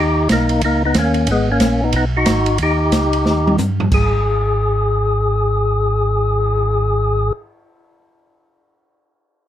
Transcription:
Already playing: D#2
0.00 D#4 G4
0.29 B1 A#3 D#4, kick, snare, hi-hat pedal, ride
0.49 ride
0.61 C#2 D#4, kick, ride
0.66 A#3
0.85 B3 D#4
0.94 D#2 C#4, kick, snare, hi-hat pedal, ride
0.99 A#3
1.14 ride
1.27 G#1, kick, ride
1.31 G#3 B3
1.52 A#3 C#4
1.60 A#1, kick, snare, hi-hat pedal, ride
1.84 B3 D#4
1.92 B1 B3 D#4, kick, ride
2.17 D#4 F#4
2.26 G#1, kick, snare, hi-hat pedal, ride
2.46 ride
2.58 D#2, kick, ride
2.63 D#4 G4
2.92 C#2, kick, snare, hi-hat pedal, ride
3.13 ride
3.25 D#2, snare
3.48 high tom
3.58 G2, hi-hat pedal, high tom
3.80 floor tom
3.91 G#1 G#4, kick, crash
4.12 cymbal swell

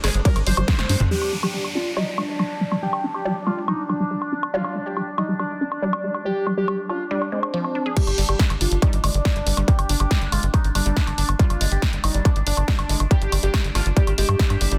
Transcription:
Already playing: D4
0.04 G1 G#3 C4 G#4, snare, open hi-hat, high woodblock
0.14 G1 C4, closed hi-hat
0.25 G3 A#4, kick, closed hi-hat, ride
0.36 G#1, closed hi-hat, high woodblock
0.47 G1 G3 C5, open hi-hat
0.57 G1 G3, closed hi-hat, high woodblock
0.68 G3, kick, snare, closed hi-hat, high tom, ride
0.79 G1, snare, closed hi-hat, high woodblock
0.89 G2 D4, open hi-hat
1.00 G1, closed hi-hat, mid tom
1.11 G3 D4 G4, crash, downlifter
1.22 high woodblock
1.32 G3
1.43 G3 G4, high woodblock
1.54 G3
1.64 high woodblock
1.75 D4 F4
1.97 G3 D#4, high woodblock
2.18 G#3 D4, high woodblock
2.39 G3, high woodblock
2.61 G3
2.72 G3, high woodblock
2.82 G3 G4
2.93 high woodblock
3.04 D4
3.14 G4, high woodblock
3.25 G3
3.47 G#3 F4, high woodblock
3.68 G3 D#4, high woodblock
3.89 G3 D4, high woodblock
4.00 G3
4.11 G3
4.22 high woodblock
4.32 D4
4.43 high woodblock
4.54 G3 F4
4.64 high woodblock
4.75 G#3
4.86 G4
4.97 G3, high woodblock
5.18 G3 D#4, high woodblock
5.29 G3
5.39 G3 D4, high woodblock
5.61 D4
5.72 high woodblock
5.82 G3
5.93 high woodblock
6.04 G#3
6.14 high woodblock
6.25 G3 G4
6.47 G3, high woodblock
6.57 G3 G4
6.68 G3, high woodblock
6.89 D4 F4, high woodblock
7.11 G3 D4
7.22 high woodblock
7.32 G#3 C4
7.43 high woodblock
7.54 F3
7.64 high woodblock
7.75 D4
7.86 G#4
7.97 G3 D4 G4, kick, closed hi-hat, crash
8.07 G1, closed hi-hat, high woodblock
8.18 G1 G3, open hi-hat
8.29 G1 G3 G4, closed hi-hat, high woodblock
8.39 G3, kick, snare, closed hi-hat
8.50 G1, closed hi-hat, high woodblock
8.61 G1 D4 F4, open hi-hat
8.72 G1, closed hi-hat
8.82 G3 D#4, kick, closed hi-hat, high woodblock
8.93 G#1, closed hi-hat
9.04 G1 G#3 D4, open hi-hat, high woodblock
9.14 G1, closed hi-hat
9.25 G3, kick, snare, closed hi-hat, high woodblock
9.36 G1, closed hi-hat
9.47 G1 G3, open hi-hat
9.57 G1 G3, closed hi-hat, high woodblock
9.68 G3 G4, kick, closed hi-hat
9.79 G1, closed hi-hat, high woodblock
9.89 G1 D4, open hi-hat
10.00 G1 G4, closed hi-hat, high woodblock
10.11 G3, kick, snare, closed hi-hat
10.22 G1, closed hi-hat
10.32 G1 G#3 F4, open hi-hat, high woodblock
10.43 G1, closed hi-hat
10.54 G3 D#4, kick, closed hi-hat, high woodblock
10.64 G#1, closed hi-hat
10.75 G1 G3 D4, open hi-hat, high woodblock
10.86 G1 G3, closed hi-hat
10.97 G3, kick, snare, closed hi-hat
11.07 G1, closed hi-hat, high woodblock
11.18 G1 D4, open hi-hat
11.29 G1, closed hi-hat, high woodblock
11.39 G3 F4, kick, closed hi-hat
11.50 G1, closed hi-hat, high woodblock
11.61 G1 G#3, open hi-hat
11.72 G1 G4, closed hi-hat
11.82 G3, kick, snare, closed hi-hat, high woodblock
11.93 G1, closed hi-hat
12.04 G1 G3 D#4, open hi-hat, high woodblock
12.14 G1 G3, closed hi-hat
12.25 G3 D4, kick, closed hi-hat, high woodblock
12.36 G#1, closed hi-hat
12.47 G1 D4, open hi-hat
12.57 G1, closed hi-hat, high woodblock
12.68 G3, kick, snare, closed hi-hat
12.79 G1, closed hi-hat, high woodblock
12.89 G1 G#3, open hi-hat
13.00 G1, closed hi-hat, high woodblock
13.11 G3 G4, kick, closed hi-hat
13.22 G1, closed hi-hat
13.32 G1 G3, open hi-hat, high woodblock
13.43 G1 G3 G4, closed hi-hat
13.54 G3, kick, snare, closed hi-hat, high woodblock
13.64 G1, closed hi-hat
13.75 G1 D4 F4, snare, open hi-hat, high woodblock
13.86 G1, closed hi-hat
13.97 G3 G4, kick, closed hi-hat
14.07 G#1, closed hi-hat, high woodblock
14.18 G1 G#3 G4, open hi-hat
14.29 G2, closed hi-hat, high woodblock
14.39 G3, kick, snare, closed hi-hat
14.50 G2, closed hi-hat, high woodblock
14.61 G1 G3, open hi-hat
14.72 G1 G3, closed hi-hat

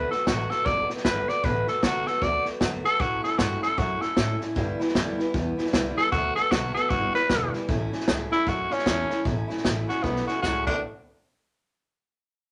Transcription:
Already playing: D2 D3 F#3 A3 B3 B4
0.11 A3 B3 F#4 A4, muted upright bass stroke, snare
0.27 A1 D3 F#3 A3 B3 F#4, kick, snare, hi-hat pedal
0.50 A3 B3 F#4 A4, muted upright bass stroke, snare
0.66 F#1 F#3 A3 B3 F#4 D5, kick, snare
0.89 A3 B3 F#4, muted upright bass stroke, snare
0.97 snare
1.05 G1 D3 F#3 A3 B3 F#4 B4, kick, snare, hi-hat pedal
1.28 A3 B3 F#4 D5, muted upright bass stroke, snare
1.44 A1 D3 F#3 A3 B3 F#4 B4, kick, snare
1.67 A3 B3 F#4 A4, snare
1.82 C2 D3 F#3 A3 B3 F#4, kick, snare, hi-hat pedal
2.06 A3 B3 F#4 A4, snare
2.22 D2 F#3 A3 B3 F#4 D5, kick, snare
2.45 A3 B3 F#4, muted upright bass stroke, snare
2.60 F#2 D3 F#3 A3 B3 F#4, kick, snare, hi-hat pedal
2.84 A3 B3 F#4 A4, muted upright bass stroke, snare
2.99 A2 F#3 A3 C#4 E4 F#4, kick, snare
3.23 A3 C#4 E4 A4, muted upright bass stroke, snare
3.38 G2 A2 F#3 A3 C#4 E4 F#4, kick, snare, hi-hat pedal
3.61 A3 C#4 E4 A4, snare
3.77 F#2 F#3 A3 C#4 E4 F#4, kick, snare
4.01 A3 C#4 E4 A4, snare
4.17 A2 F#3 A3 C#4 E4, kick, snare, hi-hat pedal
4.40 A3 C#4 E4, snare
4.55 G2 D3 E3 G3 B3 E4, kick, snare
4.79 E3 G3 B3 E4, muted upright bass stroke, snare
4.88 snare
4.94 F#2 G2 D3 E3 G3 B3 E4, kick, snare, hi-hat pedal
5.18 E3 G3 B3 E4, snare
5.34 E2 E3 G3 B3 E4, kick, snare
5.58 E3 G3 B3 E4, snare
5.66 snare
5.73 C2 G2 D3 E3 G3 B3 E4, kick, snare, hi-hat pedal
5.97 E3 G3 B3 E4 A4, muted upright bass stroke, snare
6.12 D2 D3 F#3 A3 B3 F#4, kick, snare
6.36 A3 B3 F#4 A4, muted upright bass stroke, snare
6.51 B1 D3 F#3 A3 B3 F#4, kick, snare, hi-hat pedal
6.74 A3 B3 F#4 A4, muted upright bass stroke, snare
6.90 G1 E3 G3 B3 E4 F#4, kick, snare
7.14 E3 G3 B3 E4 B4, muted upright bass stroke, snare
7.29 E1 G2 D3 E3 G3 B3 E4, kick, snare, hi-hat pedal
7.53 E3 G3 B3 E4, muted upright bass stroke, snare
7.68 A1 A2 F#3 A3 C#4 E4, kick, snare
7.92 A3 C#4 E4, snare
8.00 snare
8.07 C#2 A2 F#3 A3 C#4 E4, kick, snare, hi-hat pedal
8.31 A3 C#4 E4, snare
8.46 F#2 F#3 A3 C#4 E4 F#4, kick, snare
8.70 A3 C#4 E4, snare
8.78 snare
8.86 E2 A2 F#3 A3 C#4 E4, kick, snare, hi-hat pedal
9.09 A3 C#4 E4, snare
9.25 A1 A2 F#3 A3 C#4 E4, kick, snare
9.48 A3 C#4 E4, snare
9.57 snare
9.64 A1 A2 F#3 A3 C#4 E4, kick, snare, hi-hat pedal
9.87 A3 C#4 E4 F#4, muted upright bass stroke, snare
10.03 B1 F#3 A3 B3 C#4 E4, kick, snare
10.16 snare
10.27 A3 C#4 E4 F#4, muted upright bass stroke, snare
10.42 C#2 A2 F#3 A3 C#4 E4 F#4, kick, snare, hi-hat pedal
10.66 D2 D3 A3 B3 D4 F#4, kick, crash

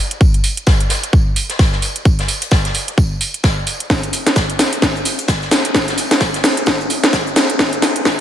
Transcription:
0.11 closed hi-hat
0.21 kick, tambourine
0.34 closed hi-hat
0.44 open hi-hat, tambourine
0.57 closed hi-hat
0.67 kick, snare, tambourine
0.80 closed hi-hat
0.89 snare, open hi-hat, tambourine
1.03 closed hi-hat
1.13 kick, tambourine
1.36 open hi-hat, tambourine
1.49 snare, closed hi-hat
1.59 kick, snare, tambourine
1.72 snare
1.82 open hi-hat, tambourine
1.96 closed hi-hat
2.05 kick, tambourine
2.19 snare, closed hi-hat
2.28 open hi-hat, tambourine
2.42 closed hi-hat
2.51 kick, snare, tambourine
2.65 snare, closed hi-hat
2.74 open hi-hat, tambourine
2.88 closed hi-hat
2.98 kick, tambourine
3.21 open hi-hat, tambourine
3.34 closed hi-hat
3.44 kick, snare, tambourine
3.66 open hi-hat, tambourine
3.80 closed hi-hat
3.90 kick, snare, tambourine, shaker
4.03 closed hi-hat, shaker
4.13 open hi-hat, tambourine, shaker
4.26 snare, closed hi-hat, shaker
4.36 kick, snare, tambourine, shaker
4.50 closed hi-hat, shaker
4.59 snare, open hi-hat, tambourine, shaker
4.73 closed hi-hat, shaker
4.82 kick, snare, tambourine, shaker
4.96 shaker
5.05 open hi-hat, tambourine, shaker
5.19 closed hi-hat, shaker
5.28 kick, snare, tambourine, shaker
5.42 snare, shaker
5.51 snare, open hi-hat, tambourine, shaker
5.65 closed hi-hat, shaker
5.75 kick, snare, tambourine, shaker
5.88 snare, closed hi-hat, shaker
5.98 open hi-hat, tambourine, shaker
6.11 snare, closed hi-hat, shaker
6.20 kick, snare, tambourine, shaker
6.34 snare, closed hi-hat, shaker
6.43 snare, open hi-hat, tambourine, shaker
6.57 closed hi-hat, shaker
6.66 kick, snare, tambourine, shaker
6.81 shaker
6.90 open hi-hat, tambourine, shaker
7.04 snare, closed hi-hat, shaker
7.13 kick, snare, tambourine, shaker
7.27 shaker
7.36 snare, open hi-hat, tambourine, shaker
7.50 closed hi-hat, shaker
7.59 kick, snare, tambourine, shaker
7.73 closed hi-hat, shaker
7.82 snare, open hi-hat, tambourine, shaker
7.96 closed hi-hat, shaker
8.05 kick, snare, tambourine, shaker

